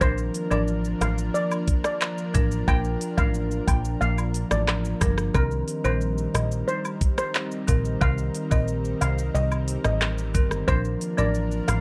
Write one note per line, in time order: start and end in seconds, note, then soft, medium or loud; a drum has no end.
0.00 0.30 A#1 loud
0.00 0.16 F3 medium
0.00 5.31 F3 medium
0.00 5.31 A#3 medium
0.00 0.16 D4 medium
0.00 5.31 D4 medium
0.00 10.64 A#4 medium
0.00 0.17 A#4 loud
0.00 0.28 C5 loud
0.00 kick loud
0.00 high woodblock medium
0.00 shaker medium
0.18 shaker medium
0.34 closed hi-hat medium
0.34 cabasa medium
0.34 shaker medium
0.51 0.95 A1 loud
0.51 0.66 F3 medium
0.51 0.66 D4 medium
0.51 0.67 A#4 medium
0.51 0.64 D5 medium
0.51 high woodblock medium
0.51 shaker medium
0.68 shaker medium
0.85 shaker medium
1.01 1.30 A1 medium
1.01 1.15 F5 medium
1.01 cross-stick medium
1.01 closed hi-hat medium
1.01 cabasa medium
1.01 high woodblock medium
1.01 shaker medium
1.18 shaker medium
1.34 1.48 D5 medium
1.34 shaker medium
1.51 high woodblock medium
1.51 shaker medium
1.68 kick loud
1.68 closed hi-hat medium
1.68 cabasa medium
1.68 shaker medium
1.84 1.98 D5 medium
1.84 cross-stick loud
1.84 shaker medium
2.01 clap loud
2.01 high woodblock medium
2.01 shaker medium
2.18 shaker medium
2.34 2.64 A1 medium
2.34 2.65 F3 medium
2.34 2.65 D4 medium
2.34 2.65 A#4 medium
2.34 kick loud
2.34 closed hi-hat medium
2.34 cabasa medium
2.34 shaker medium
2.51 shaker medium
2.68 2.97 A#1 loud
2.68 2.83 F3 medium
2.68 2.83 D4 medium
2.68 2.83 A#4 loud
2.68 2.94 G5 loud
2.68 kick loud
2.68 high woodblock medium
2.68 shaker medium
2.84 shaker medium
3.01 closed hi-hat medium
3.01 cabasa medium
3.01 shaker medium
3.18 3.61 A1 medium
3.18 3.33 F3 medium
3.18 3.33 D4 medium
3.18 3.33 A#4 medium
3.18 3.31 F5 medium
3.18 kick medium
3.18 high woodblock medium
3.18 shaker medium
3.34 shaker medium
3.51 shaker medium
3.67 3.97 A#1 medium
3.67 3.81 G5 medium
3.67 kick loud
3.67 closed hi-hat medium
3.67 cabasa medium
3.67 high woodblock medium
3.67 shaker medium
3.85 shaker medium
4.01 4.45 A#1 loud
4.01 4.14 F5 medium
4.01 shaker medium
4.18 high woodblock medium
4.18 shaker medium
4.34 closed hi-hat medium
4.34 cabasa medium
4.34 shaker soft
4.51 4.95 A1 medium
4.51 4.64 D5 medium
4.51 cross-stick loud
4.51 shaker medium
4.68 cross-stick loud
4.68 clap loud
4.68 high woodblock medium
4.68 shaker medium
4.85 shaker medium
5.01 5.30 G1 medium
5.01 5.16 F3 medium
5.01 5.16 D4 medium
5.01 5.17 A#4 medium
5.01 kick loud
5.01 cross-stick loud
5.01 closed hi-hat medium
5.01 cabasa medium
5.01 shaker medium
5.18 cross-stick medium
5.18 shaker medium
5.34 5.63 C2 loud
5.34 5.50 D#3 medium
5.34 10.64 G3 medium
5.34 5.50 C4 medium
5.34 10.64 C4 medium
5.34 10.64 D#4 medium
5.34 5.61 A#4 loud
5.34 5.50 A#4 loud
5.34 kick loud
5.34 high woodblock medium
5.34 shaker medium
5.51 shaker medium
5.68 closed hi-hat medium
5.68 cabasa medium
5.68 shaker medium
5.84 6.28 A#1 loud
5.84 6.00 D#3 medium
5.84 6.00 C4 medium
5.84 6.00 A#4 medium
5.84 5.98 C5 medium
5.84 high woodblock medium
5.84 shaker medium
6.01 shaker medium
6.18 shaker medium
6.34 6.63 A#1 medium
6.34 6.48 D#5 medium
6.34 cross-stick loud
6.34 closed hi-hat medium
6.34 cabasa medium
6.34 high woodblock medium
6.34 shaker medium
6.51 shaker medium
6.68 6.81 C5 loud
6.68 shaker medium
6.85 high woodblock medium
6.85 shaker medium
7.01 kick loud
7.01 closed hi-hat medium
7.01 cabasa medium
7.01 shaker medium
7.18 7.31 C5 medium
7.18 cross-stick loud
7.18 shaker medium
7.35 clap medium
7.35 high woodblock medium
7.35 shaker medium
7.51 shaker medium
7.68 7.97 A#1 loud
7.68 7.98 D#3 medium
7.68 7.99 C4 medium
7.68 7.99 A#4 medium
7.68 kick loud
7.68 closed hi-hat medium
7.68 cabasa medium
7.68 shaker medium
7.85 shaker medium
8.01 8.30 C2 loud
8.01 8.16 D#3 medium
8.01 8.16 C4 medium
8.01 8.17 A#4 loud
8.01 8.28 F5 medium
8.01 kick loud
8.01 high woodblock medium
8.01 shaker medium
8.18 shaker medium
8.35 closed hi-hat medium
8.35 cabasa medium
8.35 shaker medium
8.51 8.95 A#1 medium
8.51 8.66 D#3 medium
8.51 8.66 C4 medium
8.51 8.67 A#4 medium
8.51 8.65 D#5 medium
8.51 kick medium
8.51 high woodblock medium
8.51 shaker medium
8.68 shaker medium
8.85 shaker medium
9.01 9.30 C2 medium
9.01 9.14 F5 medium
9.01 closed hi-hat medium
9.01 cabasa medium
9.01 high woodblock medium
9.01 shaker medium
9.18 shaker medium
9.35 9.78 C2 loud
9.35 9.48 D#5 medium
9.35 shaker medium
9.52 high woodblock medium
9.52 shaker medium
9.68 closed hi-hat medium
9.68 cabasa medium
9.68 shaker medium
9.84 10.36 A1 loud
9.84 9.98 D#5 medium
9.84 cross-stick loud
9.84 shaker medium
10.01 cross-stick loud
10.01 clap medium
10.01 high woodblock medium
10.01 shaker medium
10.18 shaker medium
10.34 10.64 G1 loud
10.34 10.50 D#3 medium
10.34 10.50 C4 medium
10.34 10.50 A#4 medium
10.34 kick loud
10.34 closed hi-hat medium
10.34 cabasa medium
10.34 shaker medium
10.51 cross-stick medium
10.51 shaker medium
10.68 10.97 A#1 loud
10.68 10.83 F3 medium
10.68 11.81 F3 medium
10.68 11.81 A#3 medium
10.68 10.83 D4 medium
10.68 11.81 D4 medium
10.68 11.81 A#4 medium
10.68 10.83 A#4 loud
10.68 10.94 C5 loud
10.68 kick loud
10.68 high woodblock medium
10.68 shaker medium
10.85 shaker medium
11.01 closed hi-hat medium
11.01 cabasa medium
11.01 shaker medium
11.18 11.61 A1 loud
11.18 11.33 F3 medium
11.18 11.33 D4 medium
11.18 11.33 A#4 medium
11.18 11.31 D5 medium
11.18 high woodblock medium
11.18 shaker medium
11.34 shaker medium
11.51 shaker medium
11.68 11.81 A1 loud
11.68 11.81 F5 medium
11.68 cross-stick medium
11.68 closed hi-hat medium
11.68 cabasa medium
11.68 high woodblock medium
11.68 shaker medium